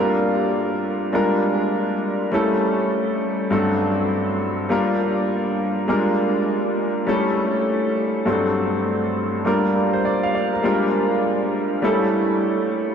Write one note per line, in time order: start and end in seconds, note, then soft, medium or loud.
0.00 1.11 G3 medium
0.00 1.11 A#3 medium
0.00 1.12 D4 medium
0.00 1.12 F4 medium
0.00 1.12 A#4 medium
1.13 2.30 G3 medium
1.13 2.30 G#3 medium
1.13 2.30 A#3 medium
1.13 2.30 D4 medium
1.13 2.31 F4 medium
1.13 2.31 A#4 medium
2.32 3.49 G3 medium
2.32 3.49 A3 medium
2.32 3.49 C#4 medium
2.32 3.50 E4 medium
2.32 3.50 A4 medium
3.50 4.67 G2 medium
3.50 4.68 F#3 medium
3.50 4.68 A3 medium
3.50 4.68 C4 medium
3.50 4.68 D4 medium
3.50 4.69 A4 medium
4.69 5.86 G3 medium
4.69 5.86 A#3 medium
4.69 5.87 D4 medium
4.69 5.87 F4 medium
4.69 5.87 A#4 medium
5.88 7.05 G3 medium
5.88 7.05 G#3 medium
5.88 7.05 A#3 medium
5.88 7.06 D4 medium
5.88 7.06 F4 medium
5.88 7.06 A#4 medium
7.07 8.24 G3 medium
7.07 8.24 A3 medium
7.07 8.24 C#4 medium
7.07 8.25 E4 medium
7.07 8.25 A4 medium
8.26 9.43 G2 medium
8.26 9.43 F#3 medium
8.26 9.43 A3 medium
8.26 9.43 C4 medium
8.26 9.44 D4 medium
8.26 9.44 A4 medium
9.45 10.62 G3 medium
9.45 10.62 A#3 medium
9.45 10.62 D4 medium
9.45 10.62 F4 medium
9.45 9.74 A#4 medium
9.76 9.93 A#4 medium
9.93 10.04 C5 medium
10.05 10.22 D5 medium
10.23 10.34 F5 medium
10.35 10.52 D5 medium
10.53 10.64 A#4 medium
10.63 11.80 G3 medium
10.63 11.80 G#3 medium
10.63 11.81 A#3 medium
10.63 11.81 D4 medium
10.63 11.81 F4 medium
10.63 11.81 A#4 medium
11.82 12.95 G3 medium
11.82 12.95 A3 medium
11.82 12.95 C#4 medium
11.82 12.95 E4 medium
11.82 12.95 A4 medium